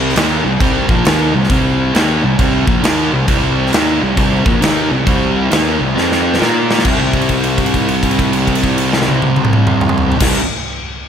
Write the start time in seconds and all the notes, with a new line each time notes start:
Already playing: C2 C3 G3 C4
0.10 snare
0.15 D#2 D#3 A#3 D#4, snare, crash
0.45 C2 C3 G3
0.60 C2 C3 G3 C4, kick, crash
0.89 A#1 A#2 F3 A#3, kick
1.05 D#2 D#3 A#3 D#4, snare, crash
1.34 C2 C3 G3
1.44 snare
1.50 C2 C3 G3 C4, kick, crash
1.95 D#2 D#3 A#3 D#4, snare, crash
2.23 C2 C3 G3
2.39 C2 C3 G3 C4, kick, crash
2.67 A#1 A#2 F3 A#3, kick
2.83 D#2 D#3 A#3 D#4, snare, crash
3.12 C2 C3 G3
3.28 C2 C3 G3 C4, kick, crash
3.67 snare
3.73 D#2 D#3 A#3 D#4, snare, crash
4.02 C2 C3 G3
4.17 C2 C3 G3 C4, kick, crash
4.46 A#1 A#2 F3 A#3, kick
4.62 D#2 D#3 A#3 D#4, snare, crash
4.90 C2 C3 G3
5.06 C2 C3 G3 C4, kick, crash
5.50 D#2 D#3 A#3 D#4, snare, crash
5.79 C2 C3 G3
5.94 F2 F3 C4 F4, snare
6.12 snare
6.34 snare
6.39 A#2 A#3 F4 A#4, snare
6.71 snare
6.79 snare
6.83 C2 C3 G3 C4 E4, kick, crash
7.13 kick, crash
7.22 crash
7.29 kick, crash
7.44 crash
7.58 kick, crash
7.66 crash
7.74 kick, crash
7.89 crash
8.03 kick, crash
8.11 crash
8.19 kick, crash
8.33 crash
8.47 kick, crash
8.55 crash
8.63 kick, crash
8.78 crash
8.93 snare
9.02 snare
9.08 high tom
9.22 high tom
9.36 high tom
9.45 mid tom
9.53 mid tom
9.67 mid tom
9.81 mid tom
9.89 mid tom
9.98 floor tom
10.12 floor tom
10.19 C2 C3 G3 C4 E4, kick, snare, crash